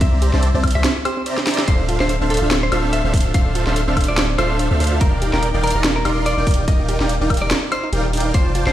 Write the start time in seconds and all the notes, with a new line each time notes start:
0.01 C2 C4 C5 D5 E5 A#5, kick, closed hi-hat
0.13 E4
0.22 G4, closed hi-hat
0.33 C2 C4 C5 D5 E5 A5, snare
0.43 C5, closed hi-hat
0.54 C2 C4 C5 D5 E5 A5
0.64 E4, kick, closed hi-hat, high woodblock
0.68 closed hi-hat
0.71 closed hi-hat
0.75 C2 C4 G4 C5 D5 E5 C6
0.84 C4, snare, closed hi-hat
0.96 E4
1.05 G4 C5, closed hi-hat, high woodblock
1.17 C4
1.26 C4 C5 D5 E5 A#5, closed hi-hat
1.38 C4, snare
1.47 E4, snare, closed hi-hat, open hi-hat
1.54 closed hi-hat
1.58 G4, snare
1.68 D1 C4 D4 A4 C5 E5 F5, kick, closed hi-hat
1.79 D4
1.89 F4, closed hi-hat
2.00 D1 C4 D4 A4 C5 E5 F5, snare
2.09 C5, closed hi-hat
2.21 D1 C4 D4 A4 C5 E5 F5
2.30 A4, closed hi-hat
2.34 closed hi-hat
2.37 closed hi-hat
2.42 D1 D4 F4 A4 C5 E5 F5
2.51 C4, snare, closed hi-hat
2.63 D4 C5
2.72 D1 D4 F4 A4 C5 E5 F5, closed hi-hat, high woodblock
2.84 C4
2.93 C5 E5, closed hi-hat
3.04 D1 C4 D4 A4 C5 E5 F5
3.14 A4, kick, closed hi-hat, open hi-hat
3.20 closed hi-hat
3.25 F4
3.34 D1 C4 D4 A4 C5 E5 F5, kick, closed hi-hat
3.46 D4
3.55 F4, closed hi-hat
3.67 D1 C4 D4 A4 C5 E5 F5, snare
3.76 C5, closed hi-hat
3.87 D1 C4 D4 A4 C5 E5 F5
3.97 A4, kick, closed hi-hat, high woodblock
4.01 closed hi-hat
4.04 closed hi-hat
4.08 D1 D4 F4 A4 C5 D5 E5 F5
4.18 C4, snare, closed hi-hat
4.29 D4
4.38 D1 D4 F4 A4 C5 E5 F5, closed hi-hat, high woodblock
4.50 C4
4.59 C5, closed hi-hat
4.71 D2 C4 D4 A4 C5 E5 F5
4.80 A4, closed hi-hat, open hi-hat
4.87 closed hi-hat
4.92 F4
5.01 D#1 D4 D#4 A#4 D5 F5 G5, kick, closed hi-hat
5.13 D#4
5.22 G4, closed hi-hat
5.33 D#1 D4 D#4 A#4 D5 F5 G5, snare
5.43 D5, closed hi-hat
5.54 D#1 D4 D#4 A#4 D5 F5 G5
5.63 A#4, closed hi-hat
5.67 closed hi-hat
5.70 closed hi-hat
5.75 D#1 D#4 G4 A#4 D5 F5 A#5
5.84 D4, snare, closed hi-hat
5.96 D#4 A#4
6.05 D#1 D#4 G4 A#4 D5 F5 C6, closed hi-hat, high woodblock
6.17 D4
6.26 D5, closed hi-hat
6.38 D#1 D4 D#4 A#4 D5 F5 G5
6.47 A#4, kick, closed hi-hat, open hi-hat
6.54 closed hi-hat
6.59 G4
6.68 D4 D#4 A#4 D5 D#5 F5 G5, kick, closed hi-hat
6.79 D#4
6.89 G4, closed hi-hat
7.00 D#1 D4 D#4 A#4 D5 F5 G5, snare
7.09 D5, closed hi-hat
7.21 D#1 D4 D#4 A#4 D5 F5 G5
7.30 A#4, kick, closed hi-hat, high woodblock
7.34 closed hi-hat
7.37 closed hi-hat
7.42 D#1 D#4 G4 A#4 D5 F5 A#5
7.51 D4, snare, closed hi-hat
7.63 D#4
7.72 D#4 C5, closed hi-hat, high woodblock
7.83 D#4
7.93 D#1 D#4 G4 A#4 D5 F5 G5, closed hi-hat
8.05 G4
8.13 D4, closed hi-hat, open hi-hat
8.20 closed hi-hat
8.25 A#4
8.34 C4 F4 C5 D5 G5 A5, kick, closed hi-hat
8.46 C5
8.55 F4, closed hi-hat
8.67 F1 C4 F4 C5 D5 G5 A5, snare